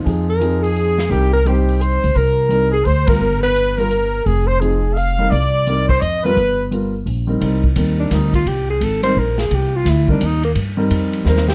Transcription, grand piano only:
X:1
M:3/4
L:1/8
Q:"Swing" 1/4=172
K:Cm
V:1 name="Grand piano"
[F,CEA] z [F,CEA]3 z | [G,CEB] z [G,CEc]3 z | z2 [G,CEB] z2 [G,=B,F_B] | z3 [G,=B,F^A] z2 |
z2 [F,CEA] z2 [G,CEB] | z2 [G,CEB] z2 [G,=B,F^A] | z2 [G,=B,F^A] z2 [G,CEA] | [G,CEB] z [G,CEB]2 [G,CEB] z |
z3 [G,CEB] z2 | z3 [G,CEB] z2 | z [G,CEB]3 [G,CEc] z |]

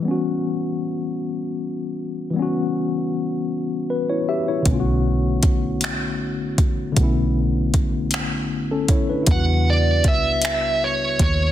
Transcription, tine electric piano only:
X:1
M:6/8
L:1/16
Q:3/8=52
K:Edor
V:1 name="Tine electric piano"
z12 | z8 B [Ec] [Ge] [Ec]- | [Ec] z8 z3 | z8 z [CA] [Ec] [DB]- |
[DB] z8 z3 |]
V:2 name="Tine electric piano"
[E,G,B,CF]12 | [E,G,B,CF]12 | [D,A,B,C=F^F]12 | [D,A,B,CE]12 |
[C,G,B,EF]12 |]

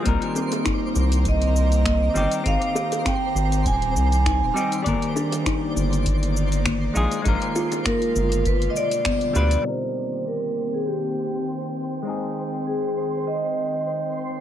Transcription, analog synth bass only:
X:1
M:4/4
L:1/16
Q:"Swing 16ths" 1/4=100
K:Cm
V:1 name="Analog synth bass" clef=bass
C,, z4 z C,,6- C,, z G,,, z | A,,, z4 z A,,,2 E,,,2 C,,3 E,,, z2 | G,,, z4 z G,,,6- G,,, z B,,, z | B,,, z4 z G,,,3 z4 z D,, z |
z16 | z16 |]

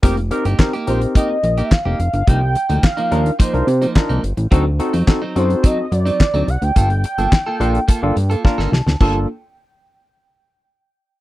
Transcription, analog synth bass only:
X:1
M:4/4
L:1/16
Q:1/4=107
K:Gm
V:1 name="Analog synth bass" clef=bass
F,,,3 G,,, z2 B,,,2 z2 B,,,2 z F,,, F,,, G,,, | C,,3 D,, z2 E,,2 z C,, C,2 z C,, G,,, A,,, | D,,3 F,, z2 ^F,,2 z2 F,,2 z D,, C,, D,, | G,,,3 G,,, z2 B,,,2 z G,,, G,,2 z G,,, C,, D,, |
G,,,2 z12 z2 |]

